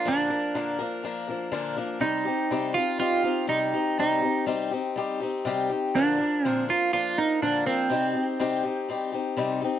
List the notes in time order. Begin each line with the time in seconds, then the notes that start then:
0.05 A#2 D3 F3 A#3 D4 A#4
0.30 F3 A#3 D4 A#4
0.54 A#2 D3 F3 A#3 D4 A#4
0.79 F3 A#3 D4 A#4
1.04 F3 A#3 D4 A#4
1.28 F3 A#3 D4 A#4
1.52 A#2 D3 F3 A#3 D4 A#4
1.76 F3 A#3 D4 A#4
2.00 C3 G3 C4 D#4 G4
2.25 C4 D#4 G4
2.51 C3 G3 C4 D#4 G4
2.74 C4 D#4 F4 G4
2.98 G3 C4 D#4 F4 G4
3.23 C4 D#4 G4
3.47 C3 G3 C4 D#4 G4
3.73 C4 D#4 G4
3.99 C3 G3 C4 D#4 G4
4.21 C4 D#4 G4
4.46 C3 G3 C4 D#4 G4
4.71 C4 D#4 G4
4.96 G3 C4 D#4 G4
5.20 C4 D#4 G4
5.45 C3 G3 C4 D#4 G4
5.69 C4 D#4 G4
5.95 A#2 D3 F3 A#3 D4 A#4
6.18 F3 A#3 D4 A#4
6.45 A#2 D3 F3 A#3 C4 D4 A#4
6.69 F3 A#3 D4 F4 A#4
6.93 F3 A#3 D4 F4 A#4
7.18 F3 A#3 D4 D#4 A#4
7.42 A#2 D3 F3 A#3 D4 A#4
7.66 F3 A#3 C4 D4 A#4
7.90 C3 G3 C4 D#4 G4
8.13 C4 D#4 G4
8.39 C3 G3 C4 D#4 G4
8.63 C4 D#4 G4
8.89 G3 C4 D#4 G4
9.12 C4 D#4 G4
9.37 C3 G3 C4 D#4 G4
9.61 C4 D#4 G4